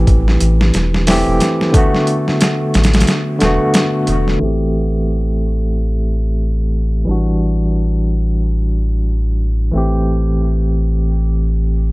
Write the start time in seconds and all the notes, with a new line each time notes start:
Already playing: E3 A3 C4 G4
0.07 A1, kick, closed hi-hat
0.28 snare
0.40 A1, closed hi-hat
0.61 snare
0.74 E1, snare, closed hi-hat
0.94 snare
1.07 E3 A3 C4 G4, snare, open hi-hat
1.28 E1
1.40 snare, closed hi-hat
1.61 snare
1.72 D3 A3, kick, closed hi-hat
1.76 B3 F#4
1.94 snare
2.07 closed hi-hat
2.28 snare
2.41 snare, closed hi-hat
2.74 A1, snare, closed hi-hat
2.84 snare, closed hi-hat
2.93 snare, closed hi-hat
3.00 snare, closed hi-hat
3.07 snare, closed hi-hat
3.39 E1 D3 A3, snare, closed hi-hat
3.43 B3 F#4
3.74 snare, closed hi-hat
4.07 E1, closed hi-hat
4.28 snare
4.39 A1 E3 A3
4.43 C4 G4
7.05 A1 E3 G3
7.09 D4 F#4
9.71 A1 E3 A3
9.75 C4 G4